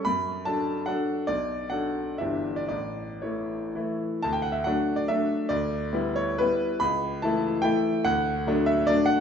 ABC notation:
X:1
M:3/4
L:1/16
Q:1/4=141
K:D
V:1 name="Grand piano"
b4 a4 f4 | d4 f4 e3 d | d4 c6 z2 | a g f e f3 d e4 |
d6 c2 B4 | b4 a4 g4 | f6 e2 d2 f2 |]
V:2 name="Grand piano"
F,,4 [F,DA]4 [F,DA]4 | B,,,4 [F,DA]4 [G,,,E,DG]4 | A,,,4 [E,A,E]4 [E,A,E]4 | D,,4 [F,A,D]4 [F,A,D]4 |
D,,4 [G,B,E]4 [G,B,E]4 | C,,4 [E,A,E]4 [E,A,E]4 | D,,4 [F,A,D]4 [F,A,D]4 |]